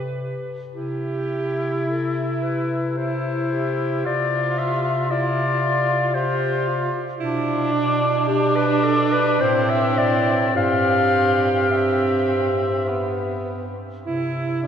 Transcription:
0.00 0.36 C3 soft
0.00 0.10 G4 medium
0.00 0.56 B4 soft
0.73 4.03 C3 medium
0.73 2.94 E4 medium
0.73 1.83 G4 medium
1.86 2.95 E4 medium
1.86 2.44 A4 medium
2.42 2.99 B4 medium
2.97 3.52 E4 medium
2.97 4.07 E4 medium
2.97 4.06 C5 medium
3.52 4.06 G4 medium
4.05 6.90 C3 medium
4.05 5.09 F4 medium
4.05 5.11 F4 medium
4.05 4.60 D5 medium
4.58 5.12 E5 medium
5.09 5.64 E4 medium
5.09 6.13 F4 medium
5.09 6.16 D5 medium
5.62 6.16 F4 medium
6.14 6.92 F4 medium
6.14 6.69 G4 medium
6.14 7.21 C5 medium
6.67 7.02 F4 medium
7.20 9.37 B2 medium
7.20 8.25 D4 medium
7.20 7.74 E4 medium
7.72 9.43 D4 medium
8.27 9.41 D4 medium
8.27 8.57 G4 loud
8.56 8.86 B4 loud
8.84 9.14 A4 loud
9.12 9.42 B4 loud
9.40 10.57 A2 medium
9.40 10.54 C4 medium
9.40 10.57 E4 medium
9.40 9.71 C5 loud
9.69 10.00 E5 loud
9.98 10.56 D5 loud
10.55 13.73 G2 medium
10.55 11.69 C4 medium
10.55 13.48 G4 medium
10.55 11.73 F5 loud
11.71 12.90 C4 medium
11.71 13.48 E5 medium
12.88 13.72 B3 medium
14.06 14.67 C3 medium
14.06 14.59 E4 medium
14.06 14.67 E4 medium
14.63 14.67 D4 medium

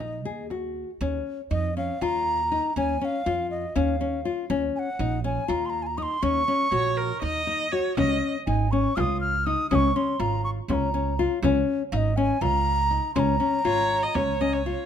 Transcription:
0.00 0.25 A#1 medium
0.00 0.20 D#4 medium
0.00 0.47 D#5 medium
0.00 frame drum soft
0.25 0.83 D#2 medium
0.25 0.45 G#4 medium
0.50 0.90 F#4 medium
0.50 frame drum soft
0.76 frame drum soft
1.01 1.20 D#2 medium
1.01 1.40 C#4 medium
1.51 1.89 F2 medium
1.51 1.70 D#4 medium
1.51 1.75 D#5 medium
1.77 1.96 C#4 medium
1.77 2.04 F5 medium
2.01 2.58 D#2 medium
2.01 2.40 F4 medium
2.01 2.76 A#5 medium
2.51 2.71 D#4 medium
2.76 2.95 D#2 medium
2.76 2.96 C#4 medium
2.76 3.02 G#5 loud
3.01 3.21 C#4 medium
3.01 3.50 F5 medium
3.01 3.06 G#5 medium
3.26 3.63 F2 medium
3.26 3.64 F4 medium
3.51 3.77 D#5 medium
3.75 4.32 D#2 medium
3.75 3.95 C#4 medium
3.75 4.31 F5 medium
4.01 4.20 C#4 medium
4.25 4.44 F4 medium
4.50 4.68 D#2 loud
4.50 4.88 C#4 medium
4.76 5.21 F#5 medium
4.76 4.80 G#5 medium
4.99 5.36 A#1 loud
4.99 5.18 D#4 medium
5.24 5.43 C#4 medium
5.24 5.50 G#5 medium
5.48 6.05 D#2 medium
5.48 5.86 F4 medium
5.48 5.67 A#5 medium
5.66 5.71 C6 medium
5.70 5.83 A#5 medium
5.82 5.88 G#5 medium
5.87 5.99 A#5 medium
5.98 6.17 D#4 medium
5.98 6.04 D#6 medium
6.03 6.24 C6 medium
6.22 6.41 D#2 loud
6.22 6.41 C#4 medium
6.22 7.22 C#6 loud
6.48 6.67 C#4 medium
6.71 7.09 A#1 medium
6.71 7.10 F#4 medium
6.71 6.98 C#5 medium
6.97 7.21 A#4 medium
7.22 7.79 D#2 medium
7.22 7.41 D#4 medium
7.22 7.73 D#5 loud
7.47 7.66 D#4 medium
7.72 7.92 F#4 medium
7.72 7.97 C#5 medium
7.97 8.16 C#2 loud
7.97 8.36 C#4 medium
7.97 8.32 D#5 medium
7.97 frame drum medium
8.47 8.85 G#1 medium
8.47 8.66 D#4 medium
8.47 8.73 G#5 medium
8.47 frame drum soft
8.71 8.92 C#4 medium
8.71 8.98 C#6 medium
8.96 9.53 C#2 medium
8.96 9.35 F4 medium
8.96 9.01 F6 medium
8.96 frame drum medium
9.00 9.20 D#6 medium
9.21 9.48 F6 loud
9.46 9.66 D#4 medium
9.46 9.70 D#6 loud
9.70 9.90 C#2 loud
9.70 9.90 C#4 medium
9.70 9.76 D#6 medium
9.70 frame drum medium
9.75 9.98 C#6 loud
9.96 10.15 C#4 medium
9.96 10.22 C6 medium
10.20 10.57 G#1 loud
10.20 10.58 F4 medium
10.20 10.44 A#5 medium
10.20 frame drum soft
10.44 10.50 C#6 medium
10.44 frame drum soft
10.68 11.25 C#2 medium
10.68 10.88 C#4 medium
10.68 10.74 C6 medium
10.68 frame drum medium
10.73 11.21 A#5 medium
10.94 11.13 C#4 medium
11.19 11.38 F4 medium
11.42 11.61 C#2 loud
11.42 11.82 C#4 loud
11.42 frame drum medium
11.92 12.29 G#1 loud
11.92 12.12 D#4 medium
11.92 11.98 F5 medium
11.97 12.18 D#5 loud
12.17 12.36 C#4 medium
12.17 12.43 G#5 loud
12.41 12.97 C#2 medium
12.41 12.80 F4 medium
12.41 13.14 A#5 loud
12.41 frame drum medium
12.91 13.10 D#4 medium
12.91 frame drum soft
13.15 13.35 C#2 loud
13.15 13.35 C#4 medium
13.15 13.20 C6 loud
13.15 frame drum medium
13.19 14.62 A#5 loud
13.40 13.59 C#4 medium
13.65 14.03 G#1 medium
13.65 14.04 F4 medium
13.65 14.04 C#5 loud
14.02 14.16 D#5 medium
14.15 14.73 C#2 medium
14.15 14.35 C#4 medium
14.15 14.42 C#5 medium
14.15 frame drum medium
14.41 14.60 C#4 medium
14.41 14.55 D#5 medium
14.53 14.86 C#5 medium
14.66 14.86 F4 medium
14.66 frame drum soft

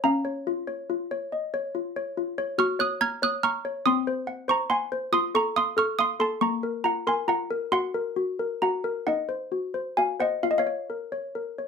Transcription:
0.04 2.55 C#4 medium
0.04 1.28 F5 medium
0.04 1.28 A#5 loud
0.25 0.59 C#5 medium
0.47 0.81 F4 medium
0.67 1.02 C#5 medium
0.90 1.24 F4 medium
1.11 1.45 C#5 medium
1.32 1.53 D#5 soft
1.54 1.87 C#5 medium
1.75 2.08 F4 medium
1.96 2.30 C#5 medium
2.17 2.51 F4 medium
2.38 2.59 C#5 medium
2.58 3.82 F#4 medium
2.58 2.79 C#6 medium
2.58 2.80 F6 loud
2.79 3.13 C#5 medium
2.79 3.00 D#6 medium
2.79 3.01 F#6 loud
3.01 3.35 A#5 medium
3.01 3.21 F6 medium
3.01 3.22 G#6 loud
3.22 3.56 C#5 medium
3.22 3.43 D#6 medium
3.22 3.44 F#6 loud
3.43 3.77 A#5 medium
3.43 3.83 C#6 loud
3.43 3.84 F6 loud
3.65 3.86 C#5 medium
3.86 5.10 C4 medium
3.86 4.46 C6 medium
3.86 4.47 D#6 loud
4.07 4.41 C5 medium
4.27 4.62 F#5 medium
4.48 4.83 C5 medium
4.48 4.70 A#5 medium
4.48 4.71 C#6 loud
4.70 5.05 F#5 medium
4.70 5.11 G#5 medium
4.70 5.11 C6 loud
4.92 5.13 C5 medium
5.12 6.38 F4 medium
5.12 5.34 C6 loud
5.12 5.35 D#6 loud
5.35 5.69 A4 medium
5.35 5.56 A#5 medium
5.35 5.57 C#6 loud
5.56 5.91 F5 medium
5.56 5.77 C6 loud
5.56 5.78 D#6 loud
5.77 6.12 A4 medium
5.77 5.98 C#6 loud
5.77 5.99 F6 loud
5.99 6.33 F5 medium
5.99 6.19 C6 medium
5.99 6.20 D#6 loud
6.20 6.42 A4 medium
6.20 6.41 A5 medium
6.20 6.42 C6 loud
6.41 7.68 A#3 medium
6.41 6.82 A#5 medium
6.41 6.83 C#6 loud
6.63 6.98 A#4 medium
6.84 7.19 F4 medium
6.84 7.06 F#5 medium
6.84 7.06 A#5 loud
7.07 7.42 A#4 medium
7.07 7.28 G#5 medium
7.07 7.29 C6 loud
7.28 7.63 F4 medium
7.28 7.70 F#5 medium
7.28 7.70 A#5 loud
7.51 7.72 A#4 medium
7.72 8.15 F#4 medium
7.72 8.57 F#5 medium
7.72 8.57 C6 loud
7.94 8.30 A#4 medium
8.16 8.52 F#4 medium
8.39 8.75 A#4 medium
8.62 8.98 F#4 medium
8.62 9.04 F#5 medium
8.62 9.05 A#5 medium
8.84 9.06 A#4 medium
9.07 10.38 D#4 medium
9.07 9.93 D#5 medium
9.07 9.93 F#5 medium
9.29 9.65 C5 medium
9.52 9.88 F#4 soft
9.74 10.10 C5 medium
9.97 10.33 F#4 soft
9.97 10.19 F5 medium
9.97 10.20 G#5 medium
10.20 10.42 C5 medium
10.20 10.42 D#5 medium
10.20 10.43 F#5 medium
10.43 11.68 F4 medium
10.43 10.50 F5 medium
10.51 10.58 D#5 medium
10.58 10.65 C#5 medium
10.58 11.68 F5 medium
10.67 11.03 C#5 soft
10.90 11.26 A#4 soft
11.12 11.48 C#5 soft
11.35 11.68 A#4 soft
11.58 11.68 C#5 soft

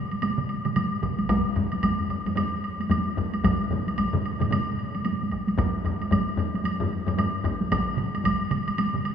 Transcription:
0.11 taiko high soft
0.11 high woodblock soft
0.22 taiko high medium
0.22 high woodblock medium
0.38 taiko mid medium
0.49 high woodblock soft
0.65 taiko mid medium
0.65 taiko high medium
0.65 high woodblock soft
0.76 taiko mid medium
0.76 taiko high medium
0.76 high woodblock soft
1.02 taiko medium
1.02 taiko mid medium
1.02 high woodblock soft
1.19 taiko high medium
1.19 high woodblock soft
1.29 taiko loud
1.29 taiko high medium
1.29 high woodblock soft
1.56 taiko low-mid medium
1.56 high woodblock soft
1.72 taiko high soft
1.72 high woodblock soft
1.83 taiko medium
1.83 taiko low-mid medium
1.83 taiko high medium
1.83 high woodblock soft
2.00 taiko low-mid medium
2.10 taiko low-mid medium
2.10 high woodblock soft
2.26 taiko low-mid medium
2.26 taiko high medium
2.26 high woodblock soft
2.36 taiko low-mid medium
2.36 taiko high medium
2.36 high woodblock soft
2.64 high woodblock soft
2.80 taiko high medium
2.80 high woodblock soft
2.90 taiko low-mid medium
2.90 taiko high medium
2.90 high woodblock soft
3.17 taiko medium
3.17 taiko low-mid medium
3.17 high woodblock soft
3.34 taiko high medium
3.34 high woodblock soft
3.44 taiko loud
3.44 taiko low-mid medium
3.44 taiko mid medium
3.44 taiko high medium
3.44 high woodblock medium
3.71 taiko low-mid medium
3.71 taiko mid medium
3.87 taiko high medium
3.87 high woodblock soft
3.98 taiko medium
3.98 taiko high medium
3.98 high woodblock soft
4.13 taiko low-mid medium
4.13 taiko mid medium
4.26 high woodblock soft
4.40 taiko low-mid medium
4.40 taiko mid medium
4.40 taiko high soft
4.40 high woodblock soft
4.51 taiko low-mid medium
4.51 taiko mid medium
4.51 taiko high medium
4.51 high woodblock soft
4.79 high woodblock soft
4.95 taiko high medium
4.95 high woodblock soft
5.05 taiko high medium
5.05 high woodblock soft
5.22 taiko high medium
5.31 taiko medium
5.31 high woodblock soft
5.48 taiko high medium
5.48 high woodblock soft
5.58 taiko loud
5.58 taiko low-mid medium
5.58 taiko high medium
5.58 high woodblock soft
5.85 taiko low-mid medium
5.85 high woodblock soft
6.02 taiko high soft
6.02 high woodblock soft
6.11 taiko medium
6.11 taiko low-mid medium
6.11 taiko high medium
6.11 high woodblock soft
6.37 taiko low-mid medium
6.37 high woodblock soft
6.54 taiko high soft
6.54 high woodblock soft
6.65 taiko high medium
6.65 high woodblock soft
6.80 taiko low-mid loud
7.07 taiko low-mid loud
7.07 taiko high medium
7.07 high woodblock soft
7.18 taiko low-mid medium
7.18 taiko high medium
7.18 high woodblock soft
7.44 taiko medium
7.44 taiko low-mid medium
7.44 high woodblock soft
7.61 taiko high medium
7.71 taiko loud
7.71 taiko mid loud
7.71 taiko high medium
7.71 high woodblock medium
7.98 taiko mid medium
7.98 high woodblock soft
8.14 taiko high medium
8.14 high woodblock soft
8.24 taiko medium
8.24 taiko mid medium
8.24 taiko high medium
8.24 high woodblock medium
8.51 taiko mid loud
8.51 high woodblock soft
8.68 taiko high medium
8.68 high woodblock soft
8.78 taiko high medium
8.78 high woodblock medium
8.94 taiko mid medium
9.05 high woodblock soft

